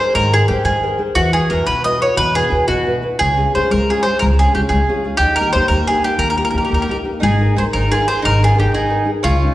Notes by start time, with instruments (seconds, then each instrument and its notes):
Already playing: mandolin C5
0.00 nylon-string guitar G#4 A#4 C5
0.14 upright bass G#2, nylon-string guitar D#3, mandolin A#4
0.32 nylon-string guitar G#4 A#4 C5, mandolin G#4
0.48 upright bass G#2, mandolin G4, nylon-string guitar G#4 A#4 C5
0.64 upright bass G#2, nylon-string guitar D#3, mandolin G#4
0.83 nylon-string guitar G#4 A#4 C5
0.98 nylon-string guitar G#4 A#4 C5
1.15 upright bass E2, nylon-string guitar E3, mandolin F#4
1.33 nylon-string guitar E4 F#4 B4, mandolin G#4
1.50 upright bass E2, nylon-string guitar E4 F#4 B4, mandolin A#4
1.66 upright bass E2, nylon-string guitar B2, mandolin B4
1.84 nylon-string guitar E4 F#4 B4, mandolin D#5
1.99 nylon-string guitar E4 F#4 B4, mandolin C#5
2.16 upright bass E2, nylon-string guitar B2, mandolin B4
2.35 nylon-string guitar E4 F#4 B4, mandolin G#4
2.50 upright bass E2, nylon-string guitar E4 F#4 B4
2.67 upright bass E2, nylon-string guitar B2, mandolin F#4
2.86 nylon-string guitar E4 F#4 B4
3.02 nylon-string guitar E4 F#4 B4
3.19 upright bass C#2, nylon-string guitar C#3, mandolin G#4
3.37 nylon-string guitar C#4 F4 G#4
3.55 upright bass C#2, nylon-string guitar C#4 F4 G#4, mandolin C5
3.70 upright bass C#2, nylon-string guitar G#3, mandolin A#4
3.90 nylon-string guitar C#4 F4 G#4, mandolin G#4
4.03 nylon-string guitar C#4 F4, mandolin C5
4.07 nylon-string guitar G#4
4.19 upright bass C#2, nylon-string guitar G#3, mandolin A#4
4.39 nylon-string guitar C#4 F4 G#4, mandolin G#4
4.54 upright bass C#2, nylon-string guitar C#4 F4 G#4, mandolin G4
4.69 upright bass C#2, nylon-string guitar G#3, mandolin G#4
4.88 nylon-string guitar C#4 F4 G#4
5.04 nylon-string guitar C#4 F4 G#4
5.17 upright bass D#2, nylon-string guitar D#3, mandolin G4
5.36 mandolin A#4
5.41 nylon-string guitar A#3 D#4 G4
5.53 upright bass D#2, nylon-string guitar A#3 D#4 G4, mandolin C5
5.68 upright bass D#2, nylon-string guitar A#3, mandolin A#4
5.87 nylon-string guitar A#3 D#4 G4, mandolin G#4
6.04 nylon-string guitar A#3 D#4 G4, mandolin G4
6.18 upright bass D#2, nylon-string guitar A#3, mandolin A#4
6.30 mandolin A#4
6.37 nylon-string guitar A#3 D#4 G4, mandolin A#4
6.45 mandolin A#4
6.51 upright bass D#2, nylon-string guitar A#3 D#4 G4, mandolin A#4
6.58 mandolin G4 A#4
6.65 mandolin G4 A#4
6.70 upright bass D#2, nylon-string guitar A#3, mandolin G4
6.74 mandolin A#4
6.81 mandolin G4 A#4
6.89 nylon-string guitar A#3 D#4 G4, mandolin G4 A#4
7.04 nylon-string guitar A#3 D#4 G4
7.20 upright bass G#1, nylon-string guitar G#3, mandolin D#4 G#4
7.40 nylon-string guitar D#4 G#4 A#4
7.56 upright bass G#1, nylon-string guitar D#4 G#4 A#4, mandolin G#4 C5
7.73 upright bass G#1, nylon-string guitar D#3, mandolin D#4 A#4
7.91 nylon-string guitar D#4 G#4 A#4, mandolin F4 G#4
8.08 nylon-string guitar D#4 G#4 A#4, mandolin G#4 C5
8.22 upright bass G#1, nylon-string guitar D#3, mandolin D#4 A#4
8.42 nylon-string guitar D#4 G#4 A#4, mandolin F4 G#4
8.55 upright bass G#1, nylon-string guitar D#4 G#4 A#4, mandolin D#4
8.60 mandolin G4
8.72 upright bass G#1, nylon-string guitar D#3, mandolin D#4 G#4
8.90 nylon-string guitar D#4 G#4 A#4
9.05 nylon-string guitar D#4 G#4 A#4
9.23 upright bass C#2, nylon-string guitar C#3, mandolin C#4 F4
9.41 nylon-string guitar C#4 D#4 F4